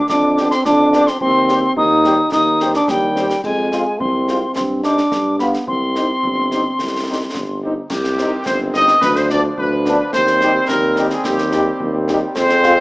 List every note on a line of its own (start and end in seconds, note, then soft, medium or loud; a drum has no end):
0.09 0.56 F2 medium
0.09 0.49 D4 medium
0.09 0.48 D6 medium
0.09 concert bass drum medium
0.09 snare medium
0.37 0.48 G3 medium
0.37 0.47 B3 medium
0.37 0.48 D4 medium
0.37 0.47 G4 medium
0.37 snare medium
0.51 0.66 C4 medium
0.51 0.64 C6 medium
0.51 snare medium
0.65 1.12 F2 medium
0.65 1.11 D4 medium
0.65 1.08 D6 medium
0.65 concert bass drum medium
0.65 snare medium
0.93 1.03 G3 medium
0.93 1.04 B3 medium
0.93 1.03 D4 medium
0.93 1.03 G4 medium
0.93 snare soft
1.07 1.21 C4 medium
1.07 1.20 C6 medium
1.07 snare soft
1.21 1.68 D#2 medium
1.21 1.73 C4 loud
1.21 1.73 C6 medium
1.21 concert bass drum medium
1.48 1.59 G3 medium
1.48 1.59 C4 medium
1.48 1.59 G4 medium
1.48 1.59 C5 medium
1.48 snare soft
1.76 2.23 D#2 medium
1.76 2.29 D#4 loud
1.76 2.29 D#6 medium
1.76 concert bass drum medium
2.04 2.15 G3 medium
2.04 2.15 C4 medium
2.04 2.15 G4 medium
2.04 2.15 C5 medium
2.04 snare soft
2.32 2.79 D#2 medium
2.32 2.72 D#4 medium
2.32 2.72 D#6 medium
2.32 concert bass drum medium
2.32 snare medium
2.60 2.70 G3 soft
2.60 2.70 C4 soft
2.60 2.70 G4 medium
2.60 2.71 C5 medium
2.60 snare medium
2.74 2.92 D4 medium
2.74 2.88 D6 medium
2.74 snare medium
2.88 3.35 D#2 medium
2.88 3.44 G3 medium
2.88 3.41 G5 medium
2.88 concert bass drum medium
2.88 snare medium
3.16 3.26 G3 medium
3.16 3.26 C4 medium
3.16 3.26 G4 medium
3.16 3.26 C5 medium
3.16 snare soft
3.30 snare soft
3.44 3.86 F2 medium
3.44 4.02 G#3 medium
3.44 3.96 G#5 medium
3.44 concert bass drum medium
3.44 crash soft
3.72 3.82 G#3 medium
3.72 3.82 C4 soft
3.72 3.82 F4 soft
3.72 3.82 C5 medium
3.72 snare medium
4.00 4.47 C2 medium
4.00 4.56 C4 medium
4.00 4.52 C6 medium
4.00 concert bass drum medium
4.28 4.38 G#3 medium
4.28 4.38 C4 medium
4.28 4.39 F4 medium
4.28 4.38 C5 medium
4.28 snare soft
4.56 5.02 G2 medium
4.56 4.82 C4 medium
4.56 4.62 C6 medium
4.56 concert bass drum medium
4.56 snare medium
4.84 4.94 G3 soft
4.84 4.94 C4 soft
4.84 5.36 D4 medium
4.84 4.94 D#4 soft
4.84 4.94 C5 soft
4.84 5.36 D6 medium
4.84 snare medium
4.98 snare soft
5.12 5.58 G2 medium
5.12 concert bass drum medium
5.12 snare medium
5.39 5.50 G3 soft
5.39 5.66 B3 medium
5.39 5.50 B3 soft
5.39 5.50 F4 medium
5.39 5.50 G4 soft
5.39 5.46 B5 medium
5.39 snare soft
5.54 snare soft
5.67 6.14 C2 medium
5.67 7.59 C4 medium
5.67 7.59 C6 medium
5.67 concert bass drum medium
5.95 6.06 G3 soft
5.95 6.06 C4 soft
5.95 6.06 D#4 soft
5.95 6.06 G4 soft
5.95 snare soft
6.23 6.70 G1 medium
6.23 concert bass drum medium
6.51 6.61 G3 soft
6.51 6.61 C4 soft
6.51 6.61 D#4 soft
6.51 6.62 G4 soft
6.51 snare soft
6.79 7.26 C2 medium
6.79 concert bass drum medium
6.79 snare medium
7.07 7.18 G3 soft
7.07 7.18 C4 soft
7.07 7.18 D#4 soft
7.07 7.17 G4 soft
7.35 7.81 G1 medium
7.35 concert bass drum medium
7.35 snare medium
7.63 7.74 G3 soft
7.63 7.73 C4 soft
7.63 7.74 D#4 soft
7.63 7.73 G4 soft
7.90 8.37 C2 medium
7.90 8.98 D#3 medium
7.90 8.98 C4 medium
7.90 8.43 G4 medium
7.90 concert bass drum medium
7.90 snare medium
7.90 crash soft
8.04 snare soft
8.18 8.29 G3 medium
8.18 8.29 C4 medium
8.18 8.29 D#4 medium
8.18 snare medium
8.46 8.93 G1 medium
8.46 8.59 C5 medium
8.46 concert bass drum medium
8.46 snare medium
8.74 8.85 G3 medium
8.74 8.85 C4 medium
8.74 8.85 D#4 medium
8.74 9.00 D#5 loud
8.74 snare medium
8.88 snare medium
9.02 9.49 D2 medium
9.02 10.13 F3 medium
9.02 10.14 D4 medium
9.02 9.15 B4 medium
9.02 concert bass drum medium
9.02 snare medium
9.16 9.30 C5 medium
9.16 snare soft
9.30 9.41 F3 medium
9.30 9.41 B3 medium
9.30 9.40 D4 medium
9.30 9.43 D5 loud
9.30 snare medium
9.57 10.00 D2 medium
9.57 10.10 B4 medium
9.57 concert bass drum medium
9.85 9.95 F3 medium
9.85 9.96 B3 medium
9.85 9.95 D4 medium
9.85 snare medium
10.13 10.60 D#2 medium
10.13 12.32 G3 medium
10.13 12.32 C4 medium
10.13 10.65 C5 loud
10.13 concert bass drum medium
10.13 snare medium
10.27 snare medium
10.41 10.51 G3 medium
10.41 10.52 D#4 medium
10.41 10.52 G4 medium
10.41 snare medium
10.68 11.15 D#2 medium
10.68 11.07 A#4 loud
10.68 concert bass drum medium
10.68 snare medium
10.96 11.07 G3 medium
10.96 11.07 D#4 medium
10.96 11.08 G4 medium
10.96 snare medium
11.10 11.25 G#4 medium
11.10 snare medium
11.24 11.71 D#2 medium
11.24 12.04 G4 medium
11.24 concert bass drum medium
11.24 snare medium
11.38 snare soft
11.52 11.62 G3 medium
11.52 11.62 D#4 medium
11.52 11.62 G4 medium
11.52 snare medium
11.80 12.27 D#2 medium
11.80 concert bass drum medium
12.08 12.18 G3 medium
12.08 12.18 D#4 medium
12.08 12.18 G4 medium
12.08 snare medium
12.35 12.80 F2 medium
12.35 12.80 G#3 medium
12.35 12.80 C4 medium
12.35 12.80 C5 loud
12.35 concert bass drum medium
12.35 snare medium
12.35 crash soft
12.49 snare medium
12.63 12.73 G#3 medium
12.63 12.73 C4 medium
12.63 12.73 F4 medium
12.63 snare medium